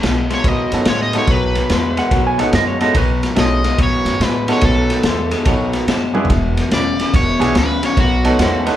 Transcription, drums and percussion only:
0.03 snare loud
0.03 ride medium
0.30 snare soft
0.30 ride medium
0.44 kick loud
0.44 snare soft
0.44 ride medium
0.72 snare soft
0.72 ride medium
0.85 snare loud
0.85 ride medium
1.13 snare soft
1.13 ride medium
1.27 kick loud
1.27 snare soft
1.27 ride medium
1.55 snare soft
1.55 ride medium
1.70 snare loud
1.70 ride medium
1.97 snare soft
1.97 ride medium
2.11 kick loud
2.11 snare soft
2.11 ride medium
2.39 snare soft
2.39 ride medium
2.53 snare loud
2.53 ride medium
2.81 snare soft
2.81 ride medium
2.95 kick loud
2.95 snare soft
2.95 ride medium
3.23 snare soft
3.23 ride medium
3.36 snare loud
3.36 ride medium
3.64 snare soft
3.64 ride medium
3.78 kick loud
3.78 snare soft
3.78 ride medium
4.06 snare soft
4.06 ride medium
4.21 snare loud
4.21 ride medium
4.48 snare soft
4.48 ride medium
4.61 kick loud
4.61 snare soft
4.61 ride medium
4.90 snare soft
4.90 ride medium
5.03 snare loud
5.03 ride medium
5.31 snare soft
5.31 ride medium
5.45 kick loud
5.45 snare soft
5.45 ride medium
5.73 snare soft
5.73 ride medium
5.88 snare loud
5.88 ride medium
6.15 high tom medium
6.25 floor tom medium
6.30 kick loud
6.30 snare soft
6.30 ride medium
6.57 snare soft
6.57 ride medium
6.71 snare loud
6.71 ride medium
7.00 snare soft
7.00 ride medium
7.14 kick loud
7.14 snare soft
7.14 ride medium
7.41 snare soft
7.41 ride medium
7.55 snare loud
7.55 ride medium
7.83 snare soft
7.83 ride medium
7.97 kick loud
7.97 snare soft
7.97 ride medium
8.25 snare soft
8.25 ride medium
8.39 snare loud
8.39 ride medium
8.67 snare soft
8.67 ride medium

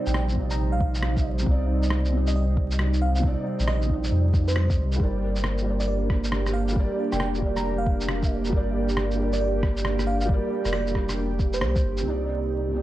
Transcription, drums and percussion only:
0.07 shaker medium
0.14 cross-stick loud
0.29 shaker soft
0.36 kick medium
0.51 shaker medium
0.80 kick loud
0.95 shaker medium
1.02 cross-stick loud
1.17 kick loud
1.17 shaker soft
1.39 shaker medium
1.46 kick loud
1.83 shaker medium
1.90 cross-stick loud
2.05 shaker soft
2.27 shaker medium
2.57 kick loud
2.71 shaker medium
2.79 cross-stick loud
2.94 shaker soft
3.16 shaker medium
3.23 kick loud
3.60 shaker medium
3.68 cross-stick loud
3.82 shaker soft
3.90 kick medium
4.04 shaker medium
4.34 kick loud
4.34 shaker soft
4.48 shaker medium
4.56 cross-stick loud
4.70 kick loud
4.70 shaker soft
4.92 shaker medium
5.00 kick loud
5.36 shaker medium
5.44 cross-stick loud
5.58 shaker soft
5.80 shaker medium
6.10 kick loud
6.10 cross-stick medium
6.24 shaker medium
6.32 cross-stick loud
6.46 cross-stick medium
6.46 shaker soft
6.68 shaker medium
6.76 kick loud
7.12 cross-stick soft
7.12 shaker soft
7.20 cross-stick loud
7.35 shaker soft
7.42 kick medium
7.57 cross-stick soft
7.57 shaker soft
7.86 kick loud
8.01 shaker medium
8.08 cross-stick loud
8.23 kick loud
8.23 shaker soft
8.45 shaker medium
8.53 kick loud
8.89 shaker medium
8.97 cross-stick loud
9.11 shaker soft
9.33 shaker medium
9.63 kick loud
9.63 cross-stick medium
9.77 shaker medium
9.85 cross-stick loud
9.99 cross-stick medium
9.99 shaker soft
10.21 shaker medium
10.29 kick loud
10.65 cross-stick soft
10.65 shaker medium
10.73 cross-stick loud
10.87 shaker soft
10.95 kick medium
10.95 cross-stick soft
11.09 cross-stick soft
11.09 shaker medium
11.39 kick loud
11.39 shaker soft
11.53 shaker medium
11.61 cross-stick loud
11.76 kick loud
11.76 shaker soft
11.97 shaker medium

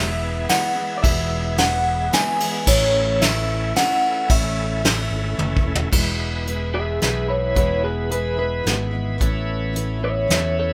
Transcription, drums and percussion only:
0.49 snare medium
0.49 ride medium
1.04 kick loud
1.04 ride medium
1.58 snare loud
1.58 ride medium
2.13 snare medium
2.13 ride medium
2.40 ride medium
2.67 kick loud
2.67 crash loud
3.21 snare medium
3.21 ride medium
3.76 snare medium
3.76 ride medium
4.30 kick loud
4.30 ride medium
4.84 snare medium
4.84 ride medium
5.39 high tom medium
5.57 kick medium
5.75 floor tom loud
5.93 kick loud
5.93 crash loud
6.47 closed hi-hat medium
7.02 snare medium
7.02 closed hi-hat medium
7.56 kick loud
7.56 closed hi-hat medium
8.11 closed hi-hat medium
8.66 snare medium
8.66 closed hi-hat medium
9.21 kick medium
9.21 closed hi-hat medium
9.76 closed hi-hat medium
10.30 snare loud
10.30 closed hi-hat medium

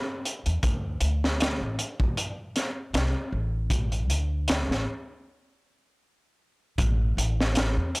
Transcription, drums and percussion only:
0.25 closed hi-hat medium
0.46 closed hi-hat soft
0.63 kick loud
0.63 closed hi-hat medium
1.01 closed hi-hat medium
1.24 snare medium
1.40 snare loud
1.40 closed hi-hat medium
1.79 closed hi-hat medium
2.00 kick loud
2.17 closed hi-hat medium
2.56 snare soft
2.56 closed hi-hat medium
2.94 snare loud
2.94 closed hi-hat medium
3.70 kick loud
3.70 closed hi-hat medium
3.92 closed hi-hat soft
4.10 closed hi-hat medium
4.48 snare loud
4.48 closed hi-hat medium
4.71 snare soft
6.78 kick loud
6.78 closed hi-hat medium
7.18 closed hi-hat medium
7.40 snare medium
7.55 snare loud
7.55 closed hi-hat medium
7.95 closed hi-hat medium

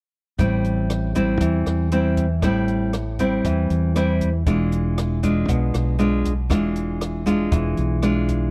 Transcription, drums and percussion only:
0.39 kick medium
0.39 closed hi-hat medium
0.64 closed hi-hat soft
0.90 cross-stick medium
0.90 closed hi-hat soft
1.15 kick soft
1.15 closed hi-hat soft
1.41 kick medium
1.41 closed hi-hat medium
1.66 cross-stick medium
1.66 closed hi-hat soft
1.92 closed hi-hat soft
2.17 kick soft
2.17 closed hi-hat soft
2.42 kick medium
2.42 cross-stick medium
2.42 closed hi-hat medium
2.68 closed hi-hat soft
2.93 cross-stick medium
2.93 closed hi-hat soft
3.19 kick soft
3.19 closed hi-hat soft
3.44 kick medium
3.44 closed hi-hat medium
3.70 closed hi-hat soft
3.96 cross-stick medium
3.96 closed hi-hat soft
4.21 kick soft
4.21 closed hi-hat soft
4.46 kick medium
4.46 closed hi-hat medium
4.72 closed hi-hat soft
4.98 cross-stick medium
4.98 closed hi-hat soft
5.23 kick soft
5.23 closed hi-hat soft
5.49 kick medium
5.49 closed hi-hat medium
5.74 cross-stick medium
5.74 closed hi-hat soft
5.99 closed hi-hat soft
6.25 kick soft
6.25 closed hi-hat soft
6.50 kick medium
6.50 cross-stick medium
6.50 closed hi-hat medium
6.76 closed hi-hat soft
7.01 cross-stick medium
7.01 closed hi-hat soft
7.26 kick soft
7.26 closed hi-hat soft
7.52 kick medium
7.52 closed hi-hat medium
7.77 closed hi-hat soft
8.02 cross-stick medium
8.02 closed hi-hat soft
8.28 kick soft
8.28 closed hi-hat soft

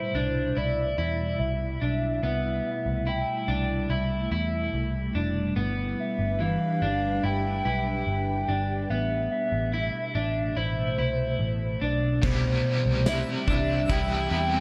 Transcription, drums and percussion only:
12.23 kick loud
12.23 crash medium
13.06 snare loud
13.06 ride medium
13.06 tambourine medium
13.48 kick medium
13.90 kick loud
13.90 ride medium

